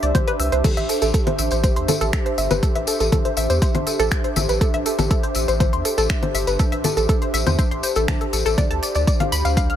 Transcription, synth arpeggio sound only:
0.03 0.14 D5 medium
0.15 0.20 C5 medium
0.28 0.39 B4 loud
0.40 0.49 E6 medium
0.52 0.61 C5 medium
0.64 0.74 A4 medium
0.77 0.82 E5 loud
0.89 0.98 A4 medium
1.02 1.11 A4 medium
1.14 1.23 A4 medium
1.27 1.32 C5 medium
1.39 1.51 E5 loud
1.52 1.60 C5 medium
1.64 1.73 C5 medium
1.76 1.85 C6 medium
1.88 1.97 A4 medium
2.01 2.06 A4 loud
2.13 2.25 E5 medium
2.26 2.31 C5 medium
2.38 2.50 E5 loud
2.51 2.62 B4 medium
2.63 2.72 A4 medium
2.75 2.81 E5 loud
2.88 2.97 A4 medium
3.00 3.09 A4 medium
3.12 3.21 A4 medium
3.25 3.30 C5 medium
3.37 3.49 E5 loud
3.50 3.58 C5 medium
3.62 3.71 C5 medium
3.75 3.83 C6 medium
3.87 3.96 A4 medium
3.99 4.05 A4 loud
4.24 4.29 C5 medium
4.36 4.48 E5 loud
4.49 4.60 B4 medium
4.61 4.70 A4 medium
4.74 4.79 E5 loud
4.86 4.95 A4 medium
4.99 5.07 A4 medium
5.11 5.20 A4 medium
5.23 5.29 C5 medium
5.35 5.48 E5 loud
5.48 5.57 C5 medium
5.60 5.69 C5 medium
5.73 5.82 C6 medium
5.85 5.94 A4 medium
5.98 6.03 A4 loud
6.10 6.22 E5 medium
6.23 6.28 C5 medium
6.35 6.47 E5 loud
6.47 6.59 B4 medium
6.59 6.69 A4 medium
6.72 6.77 E5 loud
6.84 6.93 A4 medium
6.97 7.06 A4 medium
7.09 7.18 A4 medium
7.22 7.27 C5 medium
7.34 7.46 E5 loud
7.47 7.55 C5 medium
7.59 7.68 C5 medium
7.71 7.80 C6 medium
7.83 7.89 C5 medium
7.96 8.08 A4 medium
8.08 8.20 A5 medium
8.21 8.30 A4 medium
8.33 8.45 A4 medium
8.46 8.54 A4 loud
8.58 8.67 D5 medium
8.71 8.76 A5 loud
8.83 8.92 D5 medium
8.95 9.04 D5 medium
9.07 9.17 D5 medium
9.20 9.25 F5 medium
9.32 9.44 B5 loud
9.45 9.54 F5 medium
9.57 9.66 F5 medium
9.70 9.76 F6 medium

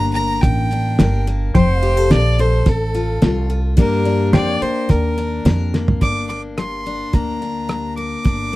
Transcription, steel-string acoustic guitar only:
0.00 0.38 G3 medium
0.00 1.26 A#3 medium
0.00 0.71 D4 medium
0.16 0.99 A#4 medium
0.44 0.94 D3 medium
0.72 1.55 D4 medium
1.00 1.49 G3 medium
1.00 1.52 A#4 medium
1.27 1.55 A#3 medium
1.55 2.05 F3 medium
1.83 1.97 G4 medium
1.97 2.38 A4 medium
2.11 2.61 C4 medium
2.39 3.75 A4 medium
2.66 3.16 C3 medium
2.94 3.21 F4 medium
3.22 3.72 C4 medium
3.22 3.48 F4 medium
3.50 3.74 F4 medium
3.77 4.27 G2 medium
3.77 4.32 G3 medium
3.77 5.73 A#3 medium
3.77 4.04 D4 medium
4.05 5.16 D4 medium
4.33 4.84 G3 medium
4.62 5.44 A#4 medium
4.89 5.39 D3 medium
5.18 6.01 D4 medium
5.45 5.95 G3 medium
5.45 5.98 A#4 medium
5.74 6.29 A#3 medium
6.01 6.51 G2 medium
6.01 6.86 D4 medium
6.30 7.14 A#3 soft
6.58 7.08 G3 medium
6.86 7.41 D4 soft
7.13 7.63 D3 medium
7.13 8.53 A#3 medium
7.42 8.25 D4 soft
7.69 8.19 G3 medium
7.97 8.56 A#4 medium
8.24 8.56 G2 medium
8.24 8.56 D4 soft

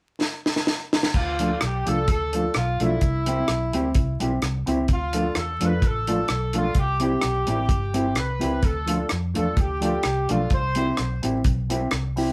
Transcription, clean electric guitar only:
1.39 1.50 F3 medium
1.39 1.50 A3 medium
1.39 1.50 D4 medium
1.39 1.50 F4 medium
1.62 muted clean electric guitar stroke soft
1.86 1.96 F3 medium
1.86 1.97 A3 medium
1.86 1.97 D4 medium
1.86 1.97 F4 loud
2.08 muted clean electric guitar stroke soft
2.34 2.44 F3 medium
2.34 2.44 A3 medium
2.34 2.44 D4 medium
2.34 2.45 F4 medium
2.80 2.90 F3 medium
2.80 2.90 A3 medium
2.80 2.91 D4 medium
2.80 2.91 F4 medium
3.27 3.37 G3 loud
3.27 3.37 C4 medium
3.27 3.38 E4 medium
3.27 3.38 G4 loud
3.48 muted clean electric guitar stroke soft
3.73 3.84 G3 medium
3.73 3.84 C4 medium
3.73 3.84 E4 loud
3.73 3.84 G4 medium
4.20 4.30 G3 medium
4.20 4.31 C4 medium
4.20 4.31 E4 medium
4.20 4.31 G4 medium
4.67 4.77 G3 medium
4.67 4.78 C4 medium
4.67 4.78 E4 medium
4.67 4.78 G4 medium
5.14 5.24 F3 medium
5.14 5.24 A3 medium
5.14 5.25 D4 medium
5.14 5.25 F4 medium
5.36 muted clean electric guitar stroke soft
5.60 5.71 F3 medium
5.60 5.71 A3 medium
5.60 5.71 D4 medium
5.60 5.72 F4 medium
5.82 muted clean electric guitar stroke soft
6.07 6.18 F3 medium
6.07 6.18 A3 medium
6.07 6.18 D4 medium
6.07 6.18 F4 medium
6.54 6.64 F3 medium
6.54 6.64 A3 medium
6.54 6.65 D4 medium
6.54 6.65 F4 medium
7.00 7.11 G3 loud
7.00 7.11 C4 medium
7.00 7.11 E4 loud
7.00 7.11 G4 loud
7.22 muted clean electric guitar stroke soft
7.46 7.57 G3 medium
7.46 7.58 C4 medium
7.46 7.58 E4 medium
7.46 7.58 G4 loud
7.94 8.04 G3 medium
7.94 8.05 C4 medium
7.94 8.05 E4 medium
7.94 8.05 G4 medium
8.39 8.51 G3 medium
8.39 8.51 C4 medium
8.39 8.51 E4 loud
8.39 8.52 G4 medium
8.86 8.98 F3 medium
8.86 8.98 A3 medium
8.86 8.98 D4 medium
8.86 8.98 F4 medium
9.09 muted clean electric guitar stroke soft
9.34 9.45 F3 medium
9.34 9.45 A3 medium
9.34 9.46 D4 medium
9.34 9.46 F4 medium
9.57 muted clean electric guitar stroke soft
9.81 9.92 F3 medium
9.81 9.92 A3 medium
9.81 9.92 D4 medium
9.81 9.92 F4 medium
10.29 10.39 F3 medium
10.29 10.39 A3 medium
10.29 10.40 D4 medium
10.29 10.40 F4 medium
10.76 10.86 G3 medium
10.76 10.86 C4 medium
10.76 10.87 E4 medium
10.76 10.87 G4 medium
10.98 muted clean electric guitar stroke soft
11.23 11.33 G3 medium
11.23 11.34 C4 medium
11.23 11.34 E4 medium
11.23 11.34 G4 medium
11.70 11.80 G3 medium
11.70 11.80 C4 loud
11.70 11.80 E4 medium
11.70 11.81 G4 medium
12.17 12.27 G3 medium
12.17 12.27 C4 medium
12.17 12.28 E4 medium
12.17 12.28 G4 medium

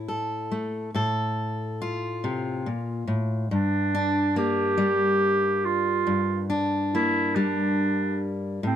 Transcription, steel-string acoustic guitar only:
0.00 0.90 A2 medium
0.00 0.90 E4 soft
0.08 0.89 A4 soft
0.51 0.90 A3 soft
0.94 2.66 A2 medium
0.94 3.47 A4 medium
1.82 3.47 F4 medium
2.24 2.66 C3 medium
2.66 3.07 A#2 soft
3.07 3.51 A2 soft
3.51 6.05 G2 medium
3.95 6.48 D4 medium
4.36 6.94 A#3 medium
4.78 6.02 G3 medium
6.07 8.63 G2 medium
6.50 8.64 D4 soft
6.95 8.66 A#3 soft
7.36 8.59 G3 medium
8.63 8.76 A2 medium

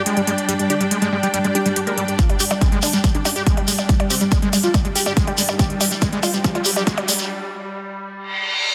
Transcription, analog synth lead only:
0.17 0.22 G3 medium
0.27 0.33 G3 medium
0.49 0.54 G3 medium
0.59 0.64 G3 medium
0.70 0.75 D4 medium
0.81 0.86 G3 medium
1.02 1.07 G3 medium
1.12 1.18 G3 medium
1.23 1.28 G4 medium
1.34 1.39 G3 medium
1.44 1.50 G3 medium
1.55 1.60 G4 medium
1.66 1.71 G3 medium
1.76 1.81 G3 medium
1.87 1.92 A#4 medium
1.98 2.03 G3 medium
2.08 2.13 G3 medium
2.19 2.24 F4 loud
2.30 2.35 G3 medium
2.40 2.45 G3 medium
2.61 2.67 G3 medium
2.72 2.77 G3 medium
2.83 2.88 D4 medium
2.93 2.98 G3 medium
3.04 3.09 G3 medium
3.15 3.20 D4 medium
3.25 3.30 G3 medium
3.36 3.41 G3 medium
3.57 3.62 G3 medium
3.68 3.73 G3 medium
3.89 3.94 G3 medium
4.00 4.05 G3 medium
4.10 4.16 C4 medium
4.21 4.26 G3 medium
4.42 4.47 G3 medium
4.53 4.58 G3 medium
4.64 4.69 F4 medium
4.74 4.79 G3 medium
4.85 4.90 G3 medium
4.95 5.01 G4 medium
5.06 5.11 G3 medium
5.17 5.22 G3 medium
5.27 5.33 G4 medium
5.38 5.43 G3 medium
5.49 5.54 G3 medium
5.59 5.64 G4 loud
5.70 5.75 G3 medium
5.81 5.86 G3 medium
6.02 6.07 G3 medium
6.12 6.18 G3 medium
6.23 6.28 F4 medium
6.34 6.39 G3 medium
6.44 6.50 G3 medium
6.55 6.60 F4 medium
6.66 6.71 G3 medium
6.76 6.81 G3 medium
6.98 7.03 G3 medium
7.08 7.13 G3 medium

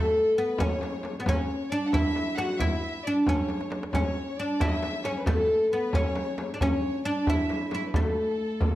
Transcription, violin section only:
0.00 0.37 A4 medium
0.37 0.58 B4 medium
0.58 1.09 C#5 medium
1.26 1.68 C#5 medium
1.70 1.86 D5 medium
1.86 1.93 F#5 medium
1.92 2.37 E5 medium
2.37 2.60 F#5 medium
2.59 3.04 E5 medium
3.04 3.20 D5 medium
3.22 3.28 D5 medium
3.28 3.78 C#5 medium
3.92 4.34 C#5 medium
4.38 4.60 D5 medium
4.60 5.05 E5 medium
5.05 5.20 C#5 medium
5.19 5.27 B4 soft
5.27 5.72 A4 medium
5.71 5.92 B4 medium
5.94 6.44 C#5 medium
6.61 7.03 C#5 medium
7.07 7.28 D5 medium
7.28 7.70 E5 medium
7.71 7.86 E5 medium
7.86 7.94 B4 soft
7.93 8.75 A4 medium

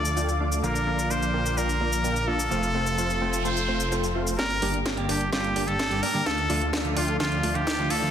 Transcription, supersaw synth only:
0.00 0.14 A3 medium
0.00 0.14 D4 medium
0.00 0.14 F4 medium
0.00 0.14 D5 medium
0.00 0.14 F5 medium
0.17 0.30 A3 medium
0.17 0.30 D4 medium
0.17 0.30 F4 medium
0.17 0.30 D5 medium
0.17 0.30 G5 medium
0.40 0.61 A3 medium
0.40 0.61 D4 medium
0.40 0.61 F4 medium
0.40 0.61 D5 medium
0.40 0.61 F5 medium
0.64 0.77 A#3 medium
0.64 0.77 D4 medium
0.64 0.77 F4 medium
0.64 0.77 D5 medium
0.64 0.77 F5 loud
0.87 1.08 A#3 medium
0.87 1.08 D4 medium
0.87 1.08 F4 medium
0.87 1.08 D5 medium
0.87 1.08 F5 loud
1.10 1.30 A#3 medium
1.10 1.30 D4 medium
1.10 1.30 F4 medium
1.10 1.30 D5 medium
1.10 1.30 F5 medium
1.34 1.55 A#3 medium
1.34 1.55 D4 medium
1.34 1.55 F4 medium
1.34 1.55 D5 medium
1.34 1.55 G5 medium
1.57 1.70 A#3 medium
1.57 1.70 D4 medium
1.57 1.70 F4 medium
1.57 1.70 D5 medium
1.57 1.70 G5 medium
1.81 2.02 A#3 medium
1.81 2.02 D4 medium
1.81 2.02 F4 medium
1.81 2.02 D5 medium
1.81 2.02 F5 medium
2.04 2.17 A#3 medium
2.04 2.17 D4 medium
2.04 2.17 F4 medium
2.04 2.17 D5 medium
2.04 2.17 G5 medium
2.28 2.48 A#3 medium
2.28 2.48 D4 medium
2.28 2.48 F4 medium
2.28 2.48 D5 medium
2.28 2.48 F5 medium
2.51 2.64 A3 medium
2.51 2.64 C4 medium
2.51 2.64 F4 medium
2.51 2.64 C5 medium
2.51 2.64 F5 loud
2.75 2.95 A3 loud
2.75 2.95 C4 medium
2.75 2.95 F4 medium
2.75 2.95 C5 medium
2.75 2.95 F5 loud
2.98 3.18 A3 medium
2.98 3.18 C4 medium
2.98 3.18 F4 medium
2.98 3.18 C5 medium
2.98 3.18 F5 medium
3.21 3.42 A3 medium
3.21 3.42 C4 medium
3.21 3.42 F4 medium
3.21 3.42 C5 medium
3.21 3.42 G5 medium
3.45 3.58 A3 medium
3.45 3.58 C4 medium
3.45 3.58 F4 medium
3.45 3.58 C5 medium
3.45 3.58 G5 medium
3.68 3.89 A3 medium
3.68 3.89 C4 medium
3.68 3.89 F4 medium
3.68 3.89 C5 medium
3.68 3.89 F5 medium
3.92 4.05 A3 medium
3.92 4.05 C4 medium
3.92 4.05 F4 medium
3.92 4.05 C5 medium
3.92 4.05 G5 medium
4.15 4.36 A3 medium
4.15 4.36 C4 medium
4.15 4.36 F4 medium
4.15 4.36 C5 medium
4.15 4.36 F5 medium
4.39 4.52 A#3 medium
4.39 4.52 D4 medium
4.39 4.52 G4 medium
4.39 4.52 D5 medium
4.39 4.52 G5 loud
4.62 4.83 A#3 loud
4.62 4.83 D4 medium
4.62 4.83 G4 loud
4.62 4.83 D5 medium
4.62 4.83 G5 loud
4.86 5.06 A#3 medium
4.86 5.06 D4 medium
4.86 5.05 G4 medium
4.86 5.05 D5 medium
4.86 5.05 G5 medium
5.09 5.30 A#3 medium
5.09 5.30 D4 medium
5.09 5.30 G4 medium
5.09 5.30 D5 medium
5.09 5.30 A5 medium
5.32 5.45 A#3 medium
5.32 5.45 D4 medium
5.32 5.45 G4 medium
5.32 5.45 D5 medium
5.32 5.45 A5 loud
5.56 5.77 A#3 medium
5.56 5.77 D4 medium
5.56 5.77 G4 medium
5.56 5.77 D5 medium
5.56 5.77 G5 medium
5.79 5.92 A#3 medium
5.79 5.92 D4 medium
5.79 5.92 G4 medium
5.79 5.92 D5 medium
5.79 5.92 A5 medium
6.03 6.23 A#3 medium
6.03 6.23 D4 medium
6.03 6.23 G4 medium
6.03 6.23 D5 medium
6.03 6.23 G5 medium
6.26 6.39 A3 loud
6.26 6.39 D4 medium
6.26 6.39 F4 medium
6.26 6.39 D5 medium
6.26 6.39 F5 loud
6.50 6.70 A3 medium
6.50 6.70 D4 medium
6.50 6.70 F4 medium
6.50 6.70 D5 medium
6.50 6.70 F5 loud
6.73 6.93 A3 medium
6.73 6.93 D4 medium
6.73 6.93 F4 medium
6.73 6.93 D5 medium
6.73 6.93 F5 medium
6.96 7.17 A3 medium
6.96 7.17 D4 medium
6.96 7.17 F4 medium
6.96 7.17 D5 medium
6.96 7.17 G5 medium
7.20 7.33 A3 medium
7.20 7.33 D4 medium
7.20 7.33 F4 medium
7.20 7.33 D5 medium
7.20 7.33 G5 medium
7.43 7.64 A3 medium
7.43 7.64 D4 medium
7.43 7.64 F4 medium
7.43 7.64 D5 medium
7.43 7.64 F5 medium
7.67 7.80 A3 medium
7.67 7.80 D4 medium
7.67 7.80 F4 medium
7.67 7.80 D5 medium
7.67 7.80 G5 medium
7.90 8.11 A3 medium
7.90 8.11 D4 medium
7.90 8.11 F4 medium
7.90 8.11 D5 medium
7.90 8.11 F5 medium

